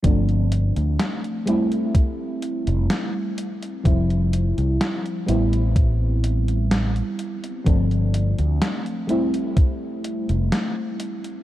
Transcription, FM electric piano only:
\new Staff \with { instrumentName = "FM electric piano" } { \time 4/4 \key f \lydian \tempo 4 = 63 <f a c' d'>4. <g a c' e'>2~ <g a c' e'>8 | <f g c' e'>4. <g b c' e'>2~ <g b c' e'>8 | <f a c' d'>4. <g a c' e'>2~ <g a c' e'>8 | }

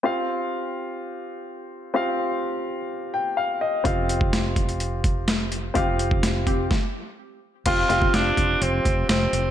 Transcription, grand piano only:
\new Staff \with { instrumentName = "Grand piano" } { \time 4/4 \key c \minor \tempo 4 = 126 << { r1 | r2 r8 g''8 f''8 ees''8 | r1 | r1 |
r1 | } \\ { <c' f' g' f''>1 | <c' f' g' f''>1 | <c' f' g' f''>1 | <c' f' g' f''>2 r2 |
<c' f' g' f''>8 <c' f' g' f''>2 r4. | } >> }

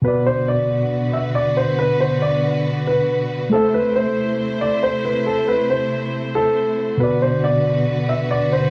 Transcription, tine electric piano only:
\new Staff \with { instrumentName = "Tine electric piano" } { \time 4/4 \key b \phrygian \tempo 4 = 138 <b, b fis' d''>1~ | <b, b fis' d''>1 | <a a' c'' e''>1~ | <a a' c'' e''>1 |
<b, b fis' d''>1 | }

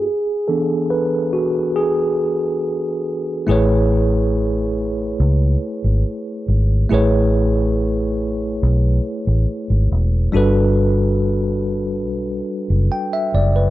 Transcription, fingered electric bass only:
\new Staff \with { instrumentName = "Fingered electric bass" } { \clef bass \time 4/4 \key a \major \tempo 4 = 70 r1 | a,,2 cis,8 r16 gis,,16 r8 gis,,8 | a,,2 b,,8 r16 a,,16 r16 gis,,16 e,,8 | g,,2 b,,8 r16 fis,,16 r8 fis,,8 | }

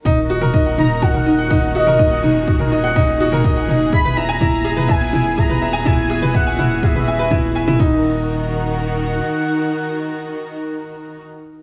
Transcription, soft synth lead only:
\new Staff \with { instrumentName = "Soft synth lead" } { \time 4/4 \key ees \phrygian \tempo 4 = 124 r4. bes''8 ges''4. ees''8~ | ees''4. r2 r8 | b''8 bes''4. gis''4 bes''4 | gis''4 ges''4 e''4. r8 |
ges''1~ | ges''1 | }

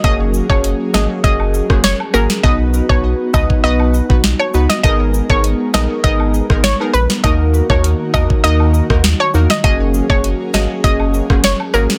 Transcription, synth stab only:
\new Staff \with { instrumentName = "Synth stab" } { \time 4/4 \key fis \mixolydian \tempo 4 = 100 <ais cis' fis' gis'>8. <ais cis' fis' gis'>8. <ais cis' fis' gis'>8 <ais cis' fis' gis'>8. <ais cis' fis' gis'>16 r8 <ais cis' fis' gis'>16 r16 | <b dis' fis' b'>8. <b dis' fis' b'>8. <b dis' fis' b'>8 <b dis' fis' b'>8. <b dis' fis' b'>16 r8 <b dis' fis' b'>16 r16 | <b dis' gis' ais'>8. <b dis' gis' ais'>8. <b dis' gis' ais'>8 <b dis' gis' ais'>8. <b dis' gis' ais'>16 r16 <b dis' gis' ais'>16 r8 | <ais dis' fis' ais'>8. <ais dis' fis' ais'>8. <ais dis' fis' ais'>8 <ais dis' fis' ais'>8. <ais dis' fis' ais'>16 r8 <ais dis' fis' ais'>16 r16 |
<ais cis' fis' gis'>8. <ais cis' fis' gis'>8. <ais cis' fis' gis'>8 <ais cis' fis' gis'>8. <ais cis' fis' gis'>16 r8 <ais cis' fis' gis'>16 r16 | }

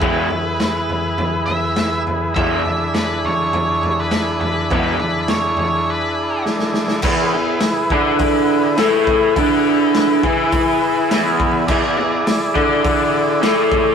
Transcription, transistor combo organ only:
\new Staff \with { instrumentName = "Transistor combo organ" } { \time 4/4 \key e \mixolydian \tempo 4 = 103 <e' gis' b'>1 | <d' e' gis'>1~ | <d' e' gis'>1 | <e' gis' b'>1~ |
<e' gis' b'>1 | <e' gis' d''>1 | }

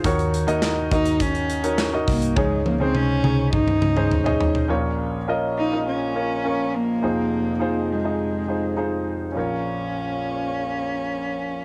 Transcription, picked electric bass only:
\new Staff \with { instrumentName = "Picked electric bass" } { \clef bass \time 4/4 \key bes \minor \tempo 4 = 103 ees,8. ees,8. ees,2 c,8 | des,8. des,8. des,4 des,4. | r1 | r1 |
r1 | }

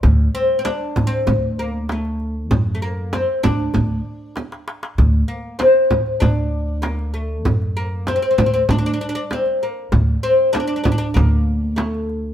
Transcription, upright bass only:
\new Staff \with { instrumentName = "Upright bass" } { \clef bass \time 4/4 \tempo 4 = 97 d,8 r4. d,2 | fis,4. d,8 d,8 r4. | d,8 r4. d,2 | fis,4. d,8 d,8 r4. |
d,8 r4. d,2 | }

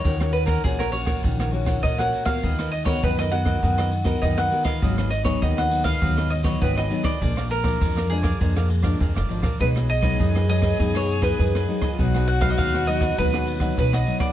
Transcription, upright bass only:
\new Staff \with { instrumentName = "Upright bass" } { \clef bass \time 4/4 \key ees \minor \tempo 4 = 100 ees,4 bes,,4 bes,,4 bes,,8 r8 | dis,4 fis,4 fis,4 fis,8 r8 | aes,,4 ees,4 ees,4 aes,,8 r8 | bes,,4 f,4 f,4 f,16 f,,16 aes,,16 bes,,16 |
b,,4 fis,4 fis,4 fis,8 r8 | b,,4 dis,4 dis,4 b,,8 r8 | }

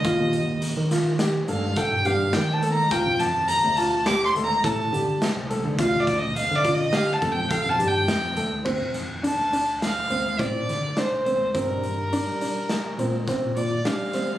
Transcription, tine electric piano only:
\new Staff \with { instrumentName = "Tine electric piano" } { \clef bass \time 5/4 \key d \phrygian \tempo 4 = 104 ees,16 ees,4 ees4~ ees16 g,8 r16 g,16 g,8 ees4 | d,16 f,4 d,4~ d,16 d,8 a,8 d8 r16 c,8 d16 | d,16 d,4 d4~ d16 f,8 r16 f,16 g,8 f,8 d,8 | d,16 f,4 d,4~ d,16 d,8 a,8 d8 r16 c,8 d,16 |
g,16 g,4 g4~ g16 bes,8 r16 bes,16 bes,8 g4 | }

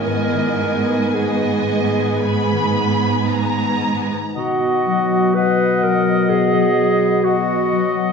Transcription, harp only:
\new Staff \with { instrumentName = "Harp" } { \time 4/4 \key gis \minor \tempo 4 = 60 <gis, dis'>16 dis16 gis16 dis'16 b'8 b'16 dis'16 gis,16 dis16 gis16 dis'16 b'16 gis'16 b'16 dis'16 | \key b \major b,16 b16 fis16 b'16 dis''16 b'16 fis16 b16 b,16 fis16 b16 b'16 dis''16 b'16 fis16 b16 | }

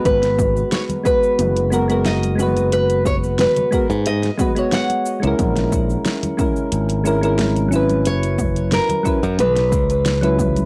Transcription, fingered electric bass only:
\new Staff \with { instrumentName = "Fingered electric bass" } { \clef bass \time 4/4 \key gis \minor \tempo 4 = 90 gis,,8. r4 r16 fis,,2~ | fis,,4 r8. gis,8 r4. cis,16 | ais,,8. r4 r16 gis,,2 | fis,,4 r8. fis,16 b,,8 cis,4~ cis,16 r16 | }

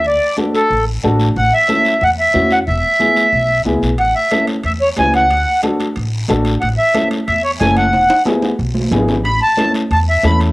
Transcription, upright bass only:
\new Staff \with { instrumentName = "Upright bass" } { \clef bass \time 4/4 \key a \major \tempo 4 = 182 d,8 r4. a,,4 a,,4 | a,,8 r4. e,4 e,4 | e,,8 r4. b,,4 cis,8 b,,8 | a,,8 r4. e,4 cis,4 |
d,8 r4. a,,4 a,,4 | a,,8 r4. e,4 fis,,4 | e,,8 r4. b,,4 gis,,4 | a,,8 r4. e,4 e,4 | }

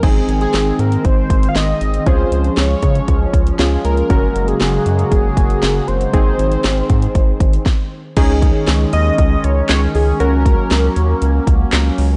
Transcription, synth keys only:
\new Staff \with { instrumentName = "Synth keys" } { \time 4/4 \key des \major \tempo 4 = 118 <c' ees' aes'>1 | <des' f' aes'>2. <des' f' aes'>4 | <des' ges' bes'>1 | <c' ees' aes'>2. r4 |
<des' ees' aes'>1 | <des' ges' bes'>1 | }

